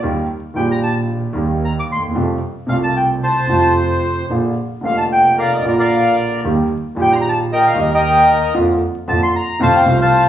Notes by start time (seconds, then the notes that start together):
0.03 D#2 D#3 G3 A#3 G4
0.54 A#1 A#2 D#3 G3 A#3 G5
0.58 G4
0.71 A#5
0.83 A5
1.33 D#2 D#3 G3 A#3 G4
1.65 A#5
1.80 D6
1.89 D#2 C6
1.96 D2
2.02 D#2
2.10 E2
2.15 F2 C3 F3 G3 A3 F4
2.67 C2 C3 G3 A3 F5
2.71 F4
2.83 A5
2.97 G5
3.23 C5 A5
3.47 F2 C3 F3 G3 A3 F4
4.29 A#1 A#2 D3 F3 A#3 F4
4.81 F1 F2 D3 F3 A#3
4.85 F4 F5
4.98 A5
5.12 G5
5.38 A#4 D5 F5
5.54 D#5
5.63 A#1 A#2 D3 F3 A#3
5.67 F4 D5
5.79 A#4 D5 F5
6.43 D#2 D#3 G3 A#3 G4
6.95 A#1 A#2 D#3 G3 A#3 G4
7.01 G5
7.13 A#5 C6
7.21 A#5
7.29 A5
7.53 A#4 D#5 G5
7.67 F5
7.75 D#2 D#3 G3 A#3 G4
7.80 D#5
7.94 A#4 D#5 G5
8.54 F2 D3 F3 A#3 F4
9.08 F2 D3 F3 A#3 F4 A5
9.23 C6
9.36 A#5
9.59 F2 C3 F3 A3 F4 C5 F5 A5
9.75 G5
9.83 C2 C3 F3 A3
9.87 C2 F4 F5
10.01 C5 F5 A5